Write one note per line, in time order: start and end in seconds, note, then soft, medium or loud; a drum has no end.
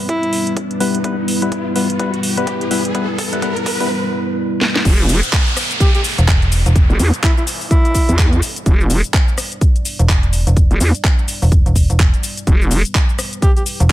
0.00 4.81 G3 medium
0.00 4.81 B3 medium
0.00 4.81 E4 medium
0.00 4.81 B4 medium
0.00 riser medium
0.09 0.57 E4 medium
0.09 kick loud
0.09 closed hi-hat medium
0.23 closed hi-hat soft
0.33 open hi-hat loud
0.47 closed hi-hat medium
0.57 kick loud
0.57 closed hi-hat medium
0.71 closed hi-hat soft
0.80 0.98 G3 medium
0.80 0.98 B3 medium
0.80 0.98 E4 medium
0.80 0.98 B4 loud
0.80 open hi-hat loud
0.95 closed hi-hat medium
1.04 1.16 G3 medium
1.04 1.16 B3 medium
1.04 1.16 E4 medium
1.04 1.16 B4 loud
1.04 kick loud
1.04 closed hi-hat medium
1.28 open hi-hat loud
1.42 1.73 G3 medium
1.42 1.73 B3 medium
1.42 1.73 E4 medium
1.42 1.73 B4 medium
1.42 closed hi-hat medium
1.52 kick loud
1.52 closed hi-hat medium
1.76 1.88 G3 medium
1.76 1.88 B3 medium
1.76 1.88 E4 medium
1.76 1.88 B4 medium
1.76 open hi-hat loud
1.90 closed hi-hat soft
1.99 2.12 G3 loud
1.99 2.12 B3 medium
1.99 2.12 E4 medium
1.99 2.12 B4 loud
1.99 kick loud
1.99 closed hi-hat medium
2.14 closed hi-hat soft
2.23 open hi-hat loud
2.37 2.69 G3 medium
2.37 2.69 B3 medium
2.37 2.69 E4 medium
2.37 2.69 B4 medium
2.37 closed hi-hat medium
2.47 kick loud
2.47 closed hi-hat medium
2.61 closed hi-hat soft
2.71 2.83 G3 medium
2.71 2.83 B3 medium
2.71 2.83 E4 medium
2.71 2.83 B4 medium
2.71 open hi-hat loud
2.85 closed hi-hat medium
2.95 3.07 G3 loud
2.95 3.07 B3 medium
2.95 3.07 E4 medium
2.95 3.07 B4 loud
2.95 kick loud
2.95 closed hi-hat medium
3.18 kick loud
3.18 open hi-hat loud
3.33 3.41 G3 medium
3.33 3.41 B3 medium
3.33 3.41 E4 medium
3.33 3.41 B4 medium
3.33 closed hi-hat soft
3.42 3.55 G3 loud
3.42 3.55 B3 medium
3.42 3.55 E4 medium
3.42 3.55 B4 loud
3.42 kick loud
3.42 closed hi-hat medium
3.56 closed hi-hat soft
3.66 kick loud
3.66 open hi-hat loud
3.80 3.88 G3 medium
3.80 3.88 B3 medium
3.80 3.88 E4 medium
3.80 3.88 B4 loud
3.80 open hi-hat medium
4.61 snare medium
4.76 snare loud
4.85 5.21 E1 medium
4.85 13.92 G3 medium
4.85 13.92 B3 medium
4.85 13.92 E4 medium
4.85 8.65 B4 medium
4.85 kick loud
4.85 closed hi-hat medium
4.85 crash loud
4.85 downlifter medium
4.85 cabasa soft
5.00 cabasa soft
5.09 open hi-hat loud
5.09 cabasa medium
5.23 closed hi-hat medium
5.23 cabasa soft
5.33 kick loud
5.33 clap loud
5.33 closed hi-hat medium
5.33 cabasa soft
5.47 cabasa soft
5.57 cross-stick medium
5.57 open hi-hat loud
5.57 cabasa medium
5.71 closed hi-hat medium
5.71 cabasa soft
5.80 5.89 G4 medium
5.80 kick loud
5.80 closed hi-hat medium
5.80 cabasa soft
5.95 6.01 G4 medium
5.95 closed hi-hat soft
5.95 cabasa soft
6.04 open hi-hat loud
6.04 cabasa medium
6.18 6.64 E1 loud
6.18 closed hi-hat medium
6.18 cabasa soft
6.28 kick loud
6.28 clap loud
6.28 closed hi-hat medium
6.28 cabasa soft
6.42 closed hi-hat soft
6.42 cabasa soft
6.52 open hi-hat loud
6.52 cabasa medium
6.66 6.88 E1 medium
6.66 closed hi-hat medium
6.66 cabasa soft
6.76 kick loud
6.76 closed hi-hat medium
6.76 cabasa soft
6.90 6.98 E1 loud
6.90 cabasa soft
6.99 7.11 E2 loud
6.99 open hi-hat loud
6.99 cabasa medium
7.14 closed hi-hat medium
7.14 cabasa soft
7.23 7.32 E4 medium
7.23 kick loud
7.23 clap loud
7.23 closed hi-hat medium
7.23 cabasa soft
7.37 7.44 E4 medium
7.37 cabasa soft
7.47 open hi-hat loud
7.47 cabasa medium
7.61 open hi-hat medium
7.61 cabasa soft
7.71 8.18 E4 loud
7.71 kick loud
7.71 closed hi-hat medium
7.71 cabasa soft
7.85 closed hi-hat soft
7.85 cabasa soft
7.95 kick medium
7.95 open hi-hat loud
7.95 cabasa medium
8.09 8.41 E2 loud
8.09 closed hi-hat medium
8.09 cabasa soft
8.18 kick loud
8.18 clap loud
8.18 closed hi-hat medium
8.18 cabasa soft
8.33 closed hi-hat soft
8.33 cabasa soft
8.42 open hi-hat loud
8.42 cabasa medium
8.56 closed hi-hat medium
8.56 cabasa soft
8.66 9.02 E1 medium
8.66 12.46 D5 medium
8.66 kick loud
8.66 closed hi-hat medium
8.66 cabasa soft
8.81 cabasa soft
8.90 open hi-hat loud
8.90 cabasa medium
9.04 closed hi-hat medium
9.04 cabasa soft
9.14 kick loud
9.14 clap loud
9.14 closed hi-hat medium
9.14 cabasa soft
9.28 cabasa soft
9.38 cross-stick medium
9.38 open hi-hat loud
9.38 cabasa medium
9.52 closed hi-hat soft
9.52 cabasa soft
9.61 kick loud
9.61 closed hi-hat medium
9.61 cabasa soft
9.76 closed hi-hat soft
9.76 cabasa soft
9.85 open hi-hat loud
9.85 cabasa medium
9.99 10.45 E1 medium
9.99 closed hi-hat medium
9.99 cabasa soft
10.09 kick loud
10.09 clap loud
10.09 closed hi-hat medium
10.09 cabasa soft
10.23 closed hi-hat soft
10.23 cabasa soft
10.33 open hi-hat loud
10.33 cabasa medium
10.47 10.69 E1 medium
10.47 closed hi-hat medium
10.47 cabasa soft
10.57 kick loud
10.57 closed hi-hat medium
10.57 cabasa soft
10.71 10.79 E1 loud
10.71 closed hi-hat soft
10.71 cabasa soft
10.80 10.92 E2 loud
10.80 open hi-hat loud
10.80 cabasa medium
10.95 closed hi-hat medium
10.95 cabasa soft
11.04 kick loud
11.04 clap loud
11.04 closed hi-hat medium
11.04 cabasa soft
11.19 cabasa soft
11.28 open hi-hat loud
11.28 cabasa medium
11.42 11.64 E1 loud
11.42 open hi-hat medium
11.42 cabasa soft
11.52 kick loud
11.52 closed hi-hat medium
11.52 cabasa soft
11.66 11.88 E1 loud
11.66 closed hi-hat soft
11.66 cabasa soft
11.76 kick medium
11.76 open hi-hat loud
11.76 cabasa medium
11.90 12.11 E1 loud
11.90 closed hi-hat medium
11.90 cabasa soft
11.99 kick loud
11.99 clap loud
11.99 closed hi-hat medium
11.99 cabasa soft
12.14 closed hi-hat soft
12.14 cabasa soft
12.23 open hi-hat loud
12.23 cabasa medium
12.37 closed hi-hat medium
12.37 cabasa soft
12.47 12.83 E1 medium
12.47 13.92 B4 medium
12.47 kick loud
12.47 closed hi-hat medium
12.47 cabasa soft
12.62 cabasa soft
12.71 open hi-hat loud
12.71 cabasa medium
12.85 closed hi-hat soft
12.85 cabasa soft
12.95 kick loud
12.95 clap loud
12.95 closed hi-hat medium
12.95 cabasa soft
13.09 cabasa soft
13.19 cross-stick medium
13.19 open hi-hat loud
13.19 cabasa medium
13.33 closed hi-hat soft
13.33 cabasa soft
13.42 13.51 G4 medium
13.42 kick loud
13.42 closed hi-hat medium
13.42 cabasa soft
13.56 13.63 G4 medium
13.56 closed hi-hat soft
13.56 cabasa soft
13.66 open hi-hat loud
13.66 cabasa medium
13.80 13.92 E1 loud
13.80 closed hi-hat medium
13.80 cabasa soft